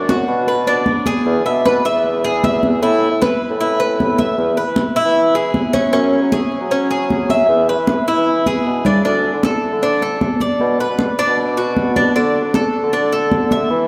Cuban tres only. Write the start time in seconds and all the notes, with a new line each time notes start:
0.09 F#4
0.48 B4
0.67 D4
1.06 G#4
1.46 E5
1.66 B4
1.85 E5
2.24 G#4
2.44 E5
2.83 E4
3.22 B4
3.60 E4
3.80 B4
4.18 E5
4.57 B4
4.96 E4
5.35 G#4
5.73 C#4
5.93 C#4
6.32 G#4
6.71 C#4
6.91 G#4
7.30 E5
7.69 B4
8.08 E4
8.47 G#4
8.86 D4
9.05 D4
9.45 A4
9.83 D4
10.02 A4
10.41 D5
10.80 B4
11.19 D4
11.57 F#4
11.96 D4
12.16 D4
12.55 A4
12.93 D4
13.12 A4
13.52 E5